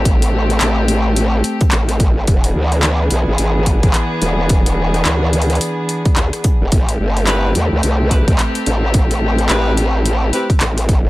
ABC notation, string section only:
X:1
M:4/4
L:1/8
Q:"Swing 16ths" 1/4=108
K:Am
V:1 name="String section"
[A,CG]8 | [E,B,D^G]8- | [E,B,D^G]8 | [A,CG]8- |
[A,CG]8 |]